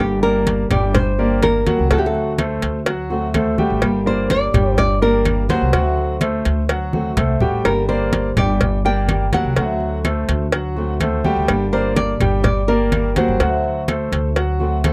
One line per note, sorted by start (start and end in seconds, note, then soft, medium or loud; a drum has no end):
0.00 0.67 G1 loud
0.00 0.94 D3 medium
0.00 0.94 G3 medium
0.00 0.94 A#3 medium
0.00 0.95 D4 medium
0.00 0.21 G4 medium
0.00 0.94 G4 medium
0.23 0.62 A#3 medium
0.23 0.67 A#4 loud
0.23 0.62 A#4 medium
0.23 0.62 D5 medium
0.23 high conga soft
0.47 cowbell medium
0.47 high conga medium
0.70 1.62 G1 loud
0.70 1.10 G3 medium
0.70 1.10 G4 medium
0.70 0.95 D5 medium
0.70 1.10 G5 medium
0.70 cowbell medium
0.70 high conga soft
0.70 low conga medium
0.70 claves medium
0.95 1.43 C5 loud
0.95 muted steel-string acoustic guitar stroke medium
0.95 cowbell loud
0.95 high conga soft
0.95 low conga medium
1.18 1.41 G3 medium
1.18 1.58 A#3 medium
1.18 1.42 A#3 medium
1.18 1.42 D4 medium
1.18 1.42 G4 medium
1.18 1.58 A#4 medium
1.18 1.58 D5 medium
1.18 high conga soft
1.43 1.66 G3 soft
1.43 1.66 A#3 medium
1.43 1.66 D4 medium
1.43 1.65 G4 medium
1.43 1.88 A#4 loud
1.43 cowbell medium
1.43 high conga medium
1.43 claves medium
1.66 1.86 F#3 medium
1.66 1.90 G3 medium
1.66 1.90 A#3 medium
1.66 1.90 D4 medium
1.66 1.87 F#4 loud
1.66 1.89 G4 medium
1.66 1.87 F#5 loud
1.66 cowbell medium
1.66 high conga medium
1.79 1.90 C#2 medium
1.90 2.59 D2 loud
1.90 2.85 D3 medium
1.90 2.30 F#3 medium
1.90 2.86 A3 medium
1.90 2.86 C4 medium
1.90 2.30 F#4 medium
1.90 2.87 F#4 medium
1.90 1.98 A4 medium
1.90 2.30 F#5 medium
1.90 cowbell loud
1.90 high conga soft
1.98 2.05 G4 medium
2.06 2.37 A4 medium
2.15 high conga soft
2.38 2.78 A3 medium
2.38 2.78 A4 medium
2.38 2.78 C5 medium
2.38 cowbell medium
2.38 high conga medium
2.38 claves medium
2.62 3.54 D2 loud
2.62 cowbell medium
2.86 3.26 F#3 medium
2.86 3.26 F#4 medium
2.86 3.26 F#5 medium
2.86 muted steel-string acoustic guitar stroke medium
2.86 cowbell loud
2.86 high conga soft
3.10 3.34 A3 medium
3.10 3.34 C4 medium
3.10 3.33 F#4 medium
3.10 high conga soft
3.34 3.57 D3 soft
3.34 3.54 A3 medium
3.34 3.57 A3 soft
3.34 3.58 C4 medium
3.34 3.57 F#4 medium
3.34 3.54 A4 medium
3.34 3.54 C5 medium
3.34 cowbell medium
3.34 high conga medium
3.34 claves medium
3.58 3.98 G3 medium
3.58 3.82 A3 medium
3.58 3.81 C4 medium
3.58 3.81 F#4 medium
3.58 3.98 G4 medium
3.58 3.98 G5 medium
3.58 high conga medium
3.70 3.82 A1 medium
3.81 4.50 G1 medium
3.81 4.76 D3 medium
3.81 4.76 G3 medium
3.81 4.77 A#3 medium
3.81 4.78 D4 medium
3.81 4.77 G4 medium
3.81 cowbell loud
3.81 high conga soft
3.81 claves medium
4.06 4.45 A#3 medium
4.06 4.45 A#4 medium
4.06 4.29 C5 loud
4.06 4.46 D5 medium
4.06 high conga soft
4.30 4.77 D5 loud
4.30 cowbell medium
4.30 high conga medium
4.54 5.46 G1 medium
4.54 4.93 G3 medium
4.54 4.93 G4 medium
4.54 4.94 G5 medium
4.54 cowbell medium
4.54 high conga soft
4.54 low conga loud
4.54 claves medium
4.77 5.02 D5 loud
4.77 muted steel-string acoustic guitar stroke medium
4.77 cowbell loud
4.77 high conga soft
4.77 low conga medium
5.01 5.24 G3 medium
5.01 5.41 A#3 medium
5.01 5.25 A#3 medium
5.01 5.25 D4 medium
5.01 5.25 G4 medium
5.01 5.41 A#4 medium
5.01 5.50 A#4 loud
5.01 5.41 D5 medium
5.01 high conga soft
5.25 5.48 G3 medium
5.25 5.49 A#3 medium
5.25 5.49 D4 medium
5.25 5.48 G4 medium
5.25 cowbell medium
5.25 high conga medium
5.25 claves medium
5.49 5.69 F#3 medium
5.49 5.73 G3 medium
5.49 5.73 A#3 medium
5.49 5.73 D4 medium
5.49 5.69 F#4 loud
5.49 5.72 G4 medium
5.49 6.90 C5 medium
5.49 5.70 F#5 loud
5.49 cowbell medium
5.49 high conga medium
5.61 5.73 C2 medium
5.73 6.42 D2 medium
5.73 6.68 D3 medium
5.73 6.13 F#3 medium
5.73 6.68 A3 medium
5.73 6.69 C4 medium
5.73 6.13 F#4 medium
5.73 6.69 F#4 medium
5.73 6.13 F#5 medium
5.73 cowbell loud
5.73 high conga soft
5.97 high conga soft
6.21 6.61 A3 medium
6.21 6.61 A4 medium
6.21 6.61 C5 medium
6.21 cowbell medium
6.21 high conga medium
6.21 claves medium
6.45 7.14 D2 medium
6.45 cowbell medium
6.69 7.08 F#3 medium
6.69 7.09 F#4 medium
6.69 7.09 F#5 medium
6.69 muted steel-string acoustic guitar stroke medium
6.69 cowbell loud
6.69 high conga soft
6.93 7.16 A3 medium
6.93 7.17 C4 medium
6.93 7.16 F#4 medium
6.93 high conga medium
7.17 7.39 C2 medium
7.17 7.40 D3 medium
7.17 7.37 A3 medium
7.17 7.40 A3 medium
7.17 7.41 C4 medium
7.17 7.39 F#4 soft
7.17 7.37 A4 medium
7.17 7.37 C5 medium
7.17 cowbell medium
7.17 low conga medium
7.17 claves medium
7.40 7.63 A1 medium
7.40 7.80 G3 medium
7.40 7.65 A3 medium
7.40 7.64 C4 medium
7.40 7.64 F#4 medium
7.40 7.80 G4 medium
7.40 7.81 G5 medium
7.40 low conga medium
7.64 8.33 G1 medium
7.64 8.60 D3 medium
7.64 8.60 G3 medium
7.64 8.60 A#3 medium
7.64 8.61 D4 medium
7.64 8.61 G4 medium
7.64 7.88 A#4 medium
7.64 cowbell loud
7.64 high conga soft
7.64 claves medium
7.89 8.28 A#3 medium
7.89 8.28 A#4 medium
7.89 8.33 C5 medium
7.89 8.29 D5 medium
7.89 high conga soft
8.13 cowbell medium
8.13 high conga medium
8.37 9.29 G1 loud
8.37 8.76 G3 medium
8.37 8.76 G4 medium
8.37 8.85 D5 loud
8.37 8.77 G5 medium
8.37 cowbell medium
8.37 high conga soft
8.37 low conga medium
8.37 claves medium
8.61 muted steel-string acoustic guitar stroke medium
8.61 cowbell loud
8.61 high conga soft
8.61 low conga medium
8.85 9.07 G3 medium
8.85 9.24 A#3 medium
8.85 9.08 A#3 medium
8.85 9.08 D4 medium
8.85 9.08 G4 medium
8.85 9.24 A#4 medium
8.85 9.24 D5 medium
8.85 9.30 G5 loud
8.85 high conga soft
9.08 9.32 G3 soft
9.08 9.32 A#3 medium
9.08 9.32 D4 medium
9.08 9.31 G4 medium
9.08 cowbell medium
9.08 high conga medium
9.08 claves medium
9.33 9.52 F#3 loud
9.33 9.55 G3 medium
9.33 9.56 A#3 medium
9.33 9.56 D4 medium
9.33 9.53 F#4 medium
9.33 9.56 G4 medium
9.33 9.53 F#5 medium
9.33 10.25 F#5 loud
9.33 cowbell medium
9.33 high conga medium
9.44 9.56 C2 medium
9.56 10.25 D2 loud
9.56 10.51 D3 medium
9.56 9.96 F#3 medium
9.56 10.52 A3 medium
9.56 10.52 C4 medium
9.56 9.96 F#4 medium
9.56 10.52 F#4 medium
9.56 9.97 F#5 medium
9.56 cowbell loud
9.56 high conga soft
9.80 high conga soft
10.04 10.44 A3 medium
10.04 10.44 A4 medium
10.04 10.44 C5 medium
10.04 cowbell medium
10.04 high conga medium
10.04 claves medium
10.29 11.20 D2 loud
10.29 cowbell medium
10.52 10.92 F#3 medium
10.52 10.92 F#4 medium
10.52 10.92 F#5 medium
10.52 muted steel-string acoustic guitar stroke medium
10.52 cowbell loud
10.52 high conga soft
10.76 11.00 A3 medium
10.76 11.00 C4 medium
10.76 10.99 F#4 medium
10.76 high conga soft
11.00 11.23 D3 medium
11.00 11.20 A3 medium
11.00 11.24 A3 medium
11.00 11.24 C4 soft
11.00 11.23 F#4 medium
11.00 11.20 A4 medium
11.00 11.21 C5 medium
11.00 cowbell medium
11.00 high conga medium
11.00 claves medium
11.24 11.64 G3 loud
11.24 11.48 A3 medium
11.24 11.48 C4 medium
11.24 11.47 F#4 medium
11.24 11.64 G4 loud
11.24 11.64 G5 loud
11.24 high conga medium
11.36 11.47 D2 medium
11.48 12.17 G1 loud
11.48 12.43 D3 medium
11.48 12.44 G3 medium
11.48 12.44 A#3 medium
11.48 12.45 D4 medium
11.48 12.44 G4 medium
11.48 cowbell loud
11.48 high conga soft
11.48 claves medium
11.72 12.12 A#3 medium
11.72 12.12 A#4 medium
11.72 11.96 C5 loud
11.72 12.12 D5 medium
11.72 high conga soft
11.96 12.42 D5 loud
11.96 cowbell medium
11.96 high conga medium
12.20 13.12 G1 loud
12.20 12.60 G3 medium
12.20 12.60 G4 medium
12.20 12.60 G5 medium
12.20 cowbell medium
12.20 high conga soft
12.20 low conga medium
12.20 claves medium
12.44 12.69 D5 loud
12.44 muted steel-string acoustic guitar stroke medium
12.44 cowbell loud
12.44 high conga soft
12.44 low conga medium
12.68 12.90 G3 medium
12.68 13.08 A#3 medium
12.68 12.91 A#3 medium
12.68 12.92 D4 medium
12.68 12.91 G4 medium
12.68 13.18 A#4 loud
12.68 13.08 A#4 medium
12.68 13.08 D5 medium
12.68 high conga soft
12.92 13.15 G3 soft
12.92 13.15 A#3 soft
12.92 13.15 D4 medium
12.92 13.15 G4 medium
12.92 cowbell medium
12.92 high conga medium
12.92 claves medium
13.16 13.36 F#3 medium
13.16 13.39 G3 medium
13.16 13.40 A#3 medium
13.16 13.40 D4 medium
13.16 13.36 F#4 medium
13.16 13.39 G4 medium
13.16 14.57 C5 medium
13.16 13.36 F#5 medium
13.16 cowbell medium
13.16 high conga medium
13.28 13.39 G1 medium
13.40 14.08 D2 loud
13.40 14.34 D3 medium
13.40 13.80 F#3 medium
13.40 14.35 A3 medium
13.40 14.35 C4 medium
13.40 13.80 F#4 medium
13.40 14.36 F#4 medium
13.40 13.80 F#5 medium
13.40 cowbell loud
13.40 high conga soft
13.64 high conga soft
13.88 14.28 A3 medium
13.88 14.28 A4 medium
13.88 14.28 C5 medium
13.88 cowbell medium
13.88 high conga medium
13.88 claves medium
14.12 14.93 D2 medium
14.12 cowbell medium
14.36 14.76 F#3 medium
14.36 14.76 F#4 medium
14.36 14.76 F#5 medium
14.36 muted steel-string acoustic guitar stroke medium
14.36 cowbell loud
14.36 high conga soft
14.59 14.83 A3 medium
14.59 14.83 C4 medium
14.59 14.83 F#4 medium
14.59 high conga soft
14.83 14.93 D3 medium
14.83 14.93 A3 soft
14.83 14.93 A3 medium
14.83 14.93 C4 medium
14.83 14.93 F#4 medium
14.83 14.93 A4 medium
14.83 14.93 C5 medium
14.83 cowbell medium
14.83 high conga medium
14.83 claves medium